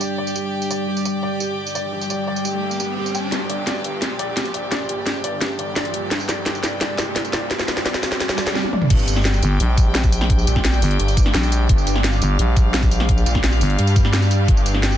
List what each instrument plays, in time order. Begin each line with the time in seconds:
Already playing: ambient pad G3 D4 G5, string section G4 D5 G5
0.01 felt piano D5, tambourine
0.18 felt piano D5
0.27 tambourine
0.36 felt piano G4, tambourine
0.53 riser
0.62 tambourine
0.70 felt piano D5, tambourine
0.88 felt piano G4
0.97 tambourine
1.05 felt piano D5, tambourine
1.23 felt piano D5
1.40 felt piano G4, tambourine
1.66 tambourine
1.75 felt piano D5, tambourine
1.93 felt piano G4
2.01 tambourine
2.10 felt piano D5, tambourine
2.27 felt piano D5
2.36 tambourine
2.45 felt piano G4, tambourine
2.71 tambourine
2.80 felt piano G4, tambourine
2.97 felt piano G4
3.06 tambourine
3.15 felt piano G5, tambourine
3.32 detuned saw bass G1, ambient pad G3 D4 D5, felt piano G4, snare, closed hi-hat, riser
3.50 felt piano D5, closed hi-hat
3.67 felt piano D5, snare, closed hi-hat
3.84 detuned saw bass G1, felt piano G4, closed hi-hat
4.02 detuned saw bass A#1, snare, closed hi-hat
4.19 felt piano D5, closed hi-hat
4.37 felt piano G4, snare, closed hi-hat
4.45 closed hi-hat
4.54 felt piano D5, closed hi-hat
4.72 felt piano D5, snare, closed hi-hat
4.89 detuned saw bass A#1, felt piano G4, closed hi-hat
5.07 snare, closed hi-hat
5.24 detuned saw bass G1, felt piano D5, closed hi-hat
5.41 detuned saw bass G1, felt piano G4, snare, closed hi-hat
5.59 felt piano D5, closed hi-hat
5.76 detuned saw bass A#1, felt piano D5, snare, closed hi-hat
5.85 closed hi-hat
5.94 felt piano G4, closed hi-hat
6.11 detuned saw bass G1, ambient pad C4, snare, closed hi-hat
6.20 tambourine
6.29 felt piano D5, snare, closed hi-hat, tambourine
6.46 felt piano G4, snare, closed hi-hat
6.55 tambourine
6.64 detuned saw bass G1, felt piano D5, snare, closed hi-hat, tambourine
6.81 detuned saw bass A#1, felt piano D5, snare, closed hi-hat
6.98 felt piano G4, snare, closed hi-hat, tambourine
7.16 snare, closed hi-hat
7.25 closed hi-hat, tambourine
7.33 felt piano D5, snare, closed hi-hat, tambourine
7.51 felt piano G4, snare, closed hi-hat
7.59 snare, tambourine
7.68 detuned saw bass A#1, felt piano D5, snare, closed hi-hat, tambourine
7.77 snare
7.86 felt piano D5, snare, closed hi-hat
7.94 snare, tambourine
8.03 detuned saw bass G1, felt piano G4, snare, open hi-hat, tambourine
8.12 snare
8.20 snare, closed hi-hat, swell
8.29 snare, tambourine
8.38 felt piano D5, snare, closed hi-hat, tambourine
8.47 snare
8.55 felt piano G4, snare
8.64 high tom
8.73 felt piano D5, mid tom
8.82 mid tom
8.90 detuned saw bass G1, ambient pad G3 D4 D5, string section G4, kick, closed hi-hat, crash
8.99 tambourine
9.08 string section D5, closed hi-hat, tambourine
9.16 snare
9.25 string section G5, snare, closed hi-hat
9.34 tambourine
9.43 fm bass G1, closed hi-hat, tambourine
9.60 fm bass A#1, closed hi-hat
9.78 kick, closed hi-hat, tambourine
9.95 snare, closed hi-hat
10.04 kick, closed hi-hat, tambourine
10.12 closed hi-hat, tambourine
10.21 snare
10.30 kick, closed hi-hat
10.39 tambourine
10.47 detuned saw bass A#1, closed hi-hat, tambourine
10.56 kick, snare
10.65 snare, closed hi-hat
10.73 tambourine
10.82 fm bass G1, open hi-hat, tambourine
10.91 closed hi-hat
11.00 detuned saw bass G1, closed hi-hat
11.08 closed hi-hat, tambourine
11.17 kick, closed hi-hat, tambourine
11.26 snare
11.34 fm bass A#1, snare, closed hi-hat
11.43 closed hi-hat, tambourine
11.52 closed hi-hat, tambourine
11.69 detuned saw bass G1, kick, closed hi-hat
11.78 tambourine
11.87 closed hi-hat, tambourine
11.96 snare
12.04 string section F5, snare, closed hi-hat
12.13 tambourine
12.22 fm bass G1, closed hi-hat, tambourine
12.39 fm bass A#1, closed hi-hat
12.57 kick, closed hi-hat, tambourine
12.74 snare, closed hi-hat
12.83 kick, closed hi-hat, tambourine
12.91 closed hi-hat, tambourine
13.00 snare
13.09 kick, closed hi-hat
13.18 tambourine
13.26 detuned saw bass A#1, closed hi-hat, tambourine
13.35 kick, snare
13.44 snare, closed hi-hat
13.52 tambourine
13.61 fm bass G1, open hi-hat, tambourine
13.70 closed hi-hat
13.79 detuned saw bass G2, closed hi-hat
13.87 closed hi-hat, tambourine
13.96 kick, closed hi-hat, tambourine
14.05 snare
14.14 snare, closed hi-hat
14.22 closed hi-hat, tambourine
14.31 closed hi-hat, tambourine
14.48 detuned saw bass G1, ambient pad G4, kick, closed hi-hat
14.57 tambourine
14.66 closed hi-hat, tambourine
14.75 snare
14.83 string section G5, snare, closed hi-hat
14.92 tambourine